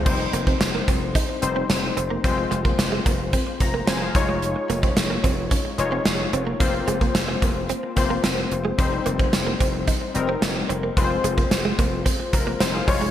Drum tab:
CC |x---------------|----------------|----------------|----------------|
HH |--x-x-x-x-x-x-x-|x-x-x-x-x-x-x-x-|x-x-x-x-x-x-x-x-|x-x-x-x-x-x-x-x-|
SD |----o-------o---|----o-------o---|----o-------o---|----o-------o---|
BD |o--o--o-o-------|o--o--o-o-o---o-|---o--o-o-------|o--o--o---o-----|

CC |----------------|----------------|
HH |x-x-x-x-x-x-x-x-|x-x-x-x-x-x-x-o-|
SD |----o-------o---|----o-------o---|
BD |o--o--o-o-------|o--o--o-o-o---o-|